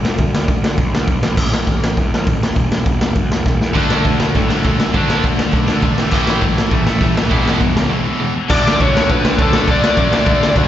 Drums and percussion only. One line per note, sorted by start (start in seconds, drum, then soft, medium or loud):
0.05 snare loud
0.18 kick loud
0.18 open hi-hat medium
0.35 snare loud
0.48 kick loud
0.48 open hi-hat medium
0.64 snare loud
0.78 kick loud
0.78 open hi-hat medium
0.95 snare loud
1.08 kick loud
1.08 open hi-hat medium
1.23 snare loud
1.37 kick loud
1.37 crash loud
1.54 snare loud
1.67 kick medium
1.67 open hi-hat medium
1.84 snare loud
1.97 kick loud
1.97 open hi-hat medium
2.14 snare loud
2.27 kick loud
2.27 open hi-hat medium
2.43 snare loud
2.55 kick loud
2.55 open hi-hat medium
2.72 snare loud
2.86 kick loud
2.86 open hi-hat medium
3.01 snare loud
3.15 kick loud
3.15 open hi-hat medium
3.32 snare loud
3.46 kick loud
3.46 snare medium
3.61 snare medium
3.75 kick loud
3.75 crash medium
3.90 snare loud
4.04 kick loud
4.04 open hi-hat medium
4.20 snare loud
4.35 kick loud
4.35 open hi-hat medium
4.50 snare loud
4.63 kick loud
4.63 open hi-hat medium
4.80 snare loud
4.94 kick loud
4.94 open hi-hat medium
5.10 snare loud
5.23 kick loud
5.23 open hi-hat medium
5.39 snare loud
5.51 kick loud
5.51 open hi-hat medium
5.68 snare loud
5.81 kick loud
5.81 open hi-hat medium
5.98 snare loud
6.11 kick loud
6.11 crash loud
6.27 snare loud
6.41 kick loud
6.41 open hi-hat soft
6.58 snare loud
6.71 kick loud
6.71 open hi-hat medium
6.87 snare medium
7.00 kick loud
7.00 open hi-hat medium
7.17 snare loud
7.31 kick loud
7.31 open hi-hat medium
7.48 snare loud
7.61 kick loud
7.61 open hi-hat medium
7.77 snare loud
8.50 kick loud
8.50 crash loud
8.50 crash medium
8.68 snare loud
8.80 kick loud
8.80 crash medium
8.97 snare loud
9.10 kick loud
9.10 crash medium
9.25 snare loud
9.39 kick loud
9.39 crash medium
9.53 snare loud
9.68 kick loud
9.68 crash medium
9.84 snare loud
9.97 kick loud
9.97 crash medium
10.13 snare loud
10.26 kick loud
10.26 crash medium
10.43 snare loud
10.56 kick loud
10.56 crash medium